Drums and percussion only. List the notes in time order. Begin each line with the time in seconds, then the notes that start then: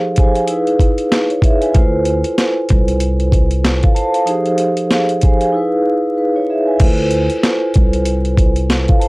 0.16 kick, closed hi-hat
0.35 closed hi-hat
0.48 closed hi-hat
0.67 closed hi-hat
0.80 kick, closed hi-hat
0.98 closed hi-hat
1.12 snare, closed hi-hat
1.30 closed hi-hat
1.42 kick, closed hi-hat
1.62 closed hi-hat
1.74 kick, closed hi-hat
2.05 closed hi-hat
2.24 closed hi-hat
2.38 snare, closed hi-hat
2.69 kick, closed hi-hat
2.88 closed hi-hat
3.00 closed hi-hat
3.20 closed hi-hat
3.32 kick, closed hi-hat
3.51 closed hi-hat
3.64 snare, closed hi-hat
3.83 kick, closed hi-hat
3.96 closed hi-hat
4.14 closed hi-hat
4.27 closed hi-hat
4.46 closed hi-hat
4.58 closed hi-hat
4.77 closed hi-hat
4.91 snare, closed hi-hat
5.09 closed hi-hat
5.21 kick, closed hi-hat
5.41 closed hi-hat
6.80 kick, closed hi-hat, crash
7.11 closed hi-hat
7.30 closed hi-hat
7.43 snare, closed hi-hat
7.74 kick, closed hi-hat
7.93 closed hi-hat
8.06 closed hi-hat
8.25 closed hi-hat
8.37 kick, closed hi-hat
8.56 closed hi-hat
8.70 snare, closed hi-hat
8.88 kick, closed hi-hat
9.01 closed hi-hat